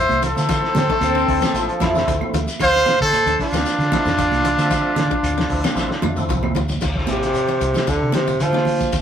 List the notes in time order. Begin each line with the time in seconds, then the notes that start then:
Already playing: F4 C5 E5
0.09 C2, closed hi-hat, high conga, claves
0.21 C4 E4 F4, closed hi-hat, low conga, shekere
0.25 A4 C5
0.35 D3 F3 A3 C4 E4, closed hi-hat, high conga, shekere
0.49 F4, kick, snare, closed hi-hat, low conga, claves, shekere
0.64 snare
0.74 D3 C4, snare, closed hi-hat, high conga, shekere
0.89 A3 D4, kick, snare
1.01 D2 C4, closed hi-hat, high conga, claves, shekere
1.15 D4, shekere
1.27 D2 F3 A3 C4 E4, kick, open hi-hat, shekere
1.41 C4, snare, closed hi-hat, high conga, claves, shekere
1.54 A1 F3 A3 C4 E4, closed hi-hat, shekere
1.69 closed hi-hat
1.80 F2 E4, kick, snare, closed hi-hat, high conga, claves, shekere
1.93 F3 G3 A3 C4 E4, snare, shekere
2.06 D2 A3 F4, kick, closed hi-hat, shekere
2.21 high conga, claves
2.33 D2 F4, closed hi-hat, high conga, low conga, shekere
2.47 closed hi-hat, high conga, shekere
2.59 D2 F4 C5 F5, kick, closed hi-hat, low conga, claves, shekere
2.75 snare, closed hi-hat
2.86 snare, closed hi-hat, high conga, shekere
3.01 D3 A4 C5, kick, closed hi-hat
3.12 closed hi-hat, high conga, claves, shekere
3.26 D2 D4, closed hi-hat, low conga, shekere
3.39 D4 F4, kick, snare, open hi-hat, shekere
3.52 D2 C4, snare, high conga, claves, shekere
3.66 snare, closed hi-hat, shekere
3.78 D3, snare, closed hi-hat
3.92 F3 A3 C4 E4, kick, snare, closed hi-hat, high conga, claves, shekere
4.05 F2, snare, shekere
4.17 F4, kick, closed hi-hat, shekere
4.31 C2, closed hi-hat, high conga, claves
4.43 C4 E4 F4, closed hi-hat, high conga, low conga, shekere
4.57 D3 F3 A3 C4 E5, closed hi-hat, high conga, shekere
4.70 F4, kick, closed hi-hat, low conga, claves, shekere
4.96 D3, snare, closed hi-hat, high conga, shekere
5.11 D4, kick
5.23 D2, closed hi-hat, claves, shekere
5.38 D4, snare, shekere
5.49 D2 F3 A3 C4 E4, kick, snare, open hi-hat, shekere
5.63 C4, snare, closed hi-hat, high conga, claves, shekere
5.75 A1 F3 A3 C4 E4, snare, shekere
5.91 snare
6.02 F2 E4, high tom, high conga, claves, shekere
6.16 F3 A3 C4 E4, high tom, shekere
6.28 C2 F4, kick, mid tom, shekere
6.43 mid tom, high conga, claves
6.55 D2 F4, floor tom, low conga, shekere
6.68 floor tom, high conga, shekere
6.81 D2 F4, kick, crash, low conga, shekere
6.95 F3 A3 C4 E4, kick, snare
7.07 A1 C3, snare, closed hi-hat, high conga, shekere
7.23 snare, closed hi-hat
7.33 closed hi-hat, shekere
7.48 G4, low conga, shekere
7.60 C2 F4, closed hi-hat, shekere
7.74 F3 A3 C4 E4, snare, high conga, shekere
7.87 D2 D3 E4, kick, closed hi-hat, shekere
8.02 C3
8.12 C3 D3 D4, snare, closed hi-hat, high conga, shekere
8.27 F4, shekere
8.39 D3 F3 A3 C4 E4, closed hi-hat, shekere
8.53 D4, snare, high conga
8.65 open hi-hat, high conga, low conga, shekere
8.79 kick, closed hi-hat, high conga, shekere
8.92 D2 F4, kick, closed hi-hat, low conga, shekere